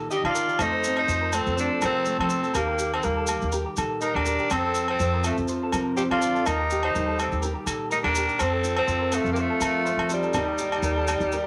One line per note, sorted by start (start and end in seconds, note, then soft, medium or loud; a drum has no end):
0.00 0.10 A#2 medium
0.00 0.19 D#3 medium
0.00 0.34 D#3 medium
0.00 0.57 A#3 medium
0.00 0.57 G4 medium
0.11 0.35 D3 medium
0.11 0.24 G4 medium
0.11 0.24 D#5 medium
0.11 maracas medium
0.16 0.26 D#5 medium
0.24 0.45 D#3 medium
0.24 0.63 F4 loud
0.24 0.35 G4 medium
0.24 low agogo medium
0.29 0.65 D5 medium
0.35 0.60 D#3 medium
0.35 0.48 A#4 medium
0.35 maracas medium
0.48 0.59 G4 medium
0.48 maracas soft
0.59 1.02 F2 medium
0.59 2.55 F2 medium
0.59 1.32 A3 medium
0.59 0.98 D#4 loud
0.59 0.72 C5 medium
0.59 low agogo medium
0.59 maracas medium
0.64 1.00 C5 medium
0.73 0.96 A4 medium
0.84 1.55 C4 medium
0.84 maracas medium
0.97 1.36 D#4 loud
0.97 low agogo medium
1.01 1.37 C5 medium
1.08 1.41 F2 medium
1.08 2.53 F3 medium
1.08 1.21 C5 medium
1.08 maracas medium
1.22 1.32 A#4 medium
1.33 2.05 A3 medium
1.33 1.58 C4 medium
1.33 1.56 A4 medium
1.33 1.58 A4 medium
1.33 low agogo medium
1.33 maracas medium
1.46 1.68 F2 medium
1.46 maracas soft
1.56 2.30 C4 medium
1.56 1.82 D4 medium
1.56 1.81 A4 medium
1.56 1.70 C5 medium
1.56 maracas medium
1.70 1.81 A4 medium
1.80 2.52 C3 medium
1.80 2.15 F3 medium
1.80 2.18 A4 medium
1.80 2.05 A#4 medium
1.80 low agogo medium
1.80 maracas medium
1.85 2.19 C4 loud
2.05 2.53 A3 medium
2.05 2.18 C5 medium
2.05 maracas medium
2.18 2.41 F3 medium
2.18 2.56 C4 medium
2.18 2.29 A4 medium
2.18 2.57 A4 medium
2.18 low agogo medium
2.29 2.56 C4 medium
2.29 2.42 C5 medium
2.29 maracas medium
2.43 2.53 A4 medium
2.43 maracas soft
2.54 2.97 D#2 medium
2.54 4.47 D#3 medium
2.54 2.93 A#3 medium
2.54 3.29 A#3 medium
2.54 2.93 G4 medium
2.54 2.79 G4 medium
2.54 2.67 A#4 loud
2.54 muted nylon-string guitar stroke medium
2.54 low agogo medium
2.54 maracas medium
2.68 2.92 G4 medium
2.79 3.52 G4 medium
2.79 maracas loud
2.94 3.06 C4 medium
2.94 3.07 A4 medium
2.94 low agogo medium
3.03 3.37 D#2 medium
3.03 4.48 G3 medium
3.03 3.53 A#3 medium
3.03 3.54 G4 medium
3.03 3.16 A#4 medium
3.03 maracas medium
3.17 3.28 A4 medium
3.27 4.00 A#3 medium
3.27 3.52 G4 medium
3.27 low agogo medium
3.27 maracas medium
3.42 3.63 D#2 medium
3.42 maracas soft
3.52 4.25 G4 medium
3.52 3.65 A#4 medium
3.52 maracas medium
3.66 3.77 G4 medium
3.77 4.48 A#2 medium
3.77 4.10 D#3 medium
3.77 4.01 A4 medium
3.77 low agogo medium
3.77 maracas medium
4.01 4.48 A#3 medium
4.01 4.16 D#4 medium
4.01 4.15 A#4 medium
4.01 4.17 A#4 medium
4.01 maracas medium
4.14 4.36 D#2 medium
4.14 4.53 D4 loud
4.14 4.26 G4 medium
4.14 4.53 A#4 medium
4.14 low agogo medium
4.25 4.48 G4 medium
4.25 4.39 A#4 medium
4.25 maracas medium
4.39 4.50 G4 medium
4.39 maracas soft
4.50 6.46 F2 medium
4.50 4.93 F2 medium
4.50 4.89 C4 medium
4.50 5.24 C4 medium
4.50 4.89 A4 medium
4.50 4.64 C5 medium
4.50 low agogo medium
4.50 maracas medium
4.65 4.88 A4 medium
4.75 5.48 F4 medium
4.75 maracas medium
4.88 5.22 C4 loud
4.88 5.22 A4 medium
4.88 low agogo medium
5.00 5.32 F2 medium
5.00 6.43 F3 medium
5.00 5.13 C5 medium
5.00 maracas medium
5.14 5.24 A#4 medium
5.24 5.36 A3 medium
5.24 6.44 C4 medium
5.24 5.35 F4 medium
5.24 5.48 A4 medium
5.24 low agogo medium
5.24 maracas medium
5.37 5.59 F2 medium
5.37 maracas soft
5.48 6.44 F4 medium
5.48 5.61 C5 medium
5.48 maracas medium
5.63 5.73 A4 medium
5.72 5.96 C3 medium
5.72 6.06 F3 medium
5.72 5.96 A#4 medium
5.72 low agogo medium
5.72 maracas medium
5.96 6.21 C3 medium
5.96 6.03 G4 medium
5.96 6.02 C5 medium
5.96 6.10 C5 medium
5.96 maracas medium
6.11 6.32 F3 medium
6.11 6.48 F4 loud
6.11 6.20 A4 medium
6.11 6.48 D5 medium
6.11 low agogo medium
6.21 6.46 D3 medium
6.21 6.34 C5 medium
6.21 maracas medium
6.35 6.45 A4 medium
6.35 maracas soft
6.46 6.89 D#2 medium
6.46 8.38 D#3 medium
6.46 7.19 A#3 medium
6.46 6.84 D#4 loud
6.46 6.58 A#4 medium
6.46 6.84 A#4 medium
6.46 low agogo medium
6.46 maracas medium
6.60 6.82 G4 medium
6.70 7.44 G4 medium
6.70 maracas medium
6.83 7.17 D#4 loud
6.83 7.17 C5 medium
6.83 low agogo medium
6.94 7.28 D#2 medium
6.94 8.38 G3 medium
6.94 7.07 A#4 medium
6.94 maracas medium
7.08 7.18 A4 medium
7.18 7.91 A#3 medium
7.18 7.43 C4 medium
7.18 7.42 G4 medium
7.18 7.43 A4 medium
7.18 low agogo medium
7.18 maracas medium
7.32 7.53 D#2 medium
7.32 maracas soft
7.42 8.17 G4 medium
7.42 7.55 A#4 medium
7.42 maracas medium
7.55 7.66 G4 medium
7.66 8.39 A#2 medium
7.66 8.00 D#3 medium
7.66 7.90 A4 medium
7.66 low agogo medium
7.66 maracas medium
7.91 8.38 A#3 medium
7.91 7.98 D#4 medium
7.91 8.04 A#4 medium
7.91 7.99 A#4 medium
7.91 maracas medium
8.04 8.26 D#2 medium
8.04 8.42 D4 loud
8.04 8.15 G4 medium
8.04 8.46 A#4 medium
8.04 low agogo medium
8.15 8.39 G4 medium
8.15 8.28 A#4 medium
8.15 maracas medium
8.28 8.39 G4 medium
8.28 maracas soft
8.39 8.83 F2 medium
8.39 10.36 F2 medium
8.39 8.77 C4 loud
8.39 9.11 C4 medium
8.39 8.53 C5 medium
8.39 low agogo medium
8.39 maracas medium
8.45 8.80 A4 medium
8.53 8.77 A4 medium
8.64 9.37 F4 medium
8.64 maracas medium
8.76 9.16 C4 loud
8.76 low agogo medium
8.82 9.19 A4 medium
8.87 9.21 F2 medium
8.87 10.33 F3 medium
8.87 9.00 C5 medium
8.87 maracas medium
9.01 9.12 A#4 medium
9.12 9.32 A3 medium
9.12 9.85 C4 medium
9.12 9.36 A4 medium
9.12 low agogo medium
9.12 maracas medium
9.17 9.33 F4 medium
9.24 9.47 F2 medium
9.24 maracas soft
9.33 9.42 A#3 medium
9.33 9.43 G4 medium
9.33 maracas medium
9.37 9.63 A3 medium
9.37 10.10 F4 medium
9.37 9.50 C5 medium
9.41 9.64 F4 medium
9.50 9.61 A4 medium
9.60 9.94 F3 medium
9.60 10.09 A3 medium
9.60 9.85 A#4 medium
9.60 muted nylon-string guitar stroke medium
9.60 low agogo medium
9.60 maracas medium
9.66 10.09 F4 medium
9.86 10.33 C4 medium
9.86 9.98 C5 medium
9.86 maracas medium
9.97 10.20 F3 medium
9.97 10.10 A4 medium
9.97 low agogo medium
10.10 11.47 G3 medium
10.10 10.33 F4 medium
10.10 10.23 C5 medium
10.10 maracas medium
10.14 11.47 D#4 medium
10.23 10.34 A4 medium
10.23 maracas soft
10.34 10.77 D#2 medium
10.34 10.84 A#3 medium
10.34 11.09 D#4 medium
10.34 10.60 G4 medium
10.34 10.47 A#4 loud
10.34 muted nylon-string guitar stroke medium
10.34 low agogo medium
10.34 maracas medium
10.48 10.71 G4 medium
10.58 11.33 G4 medium
10.58 maracas medium
10.72 low agogo medium
10.72 maracas soft
10.82 11.16 D#2 medium
10.82 10.96 A#4 medium
10.82 maracas medium
10.97 11.08 A4 medium
11.07 11.47 D#4 medium
11.07 11.32 G4 medium
11.07 low agogo medium
11.07 maracas medium
11.20 11.42 D#2 medium
11.20 maracas soft
11.32 11.47 G4 medium
11.32 11.45 A#4 medium
11.32 maracas medium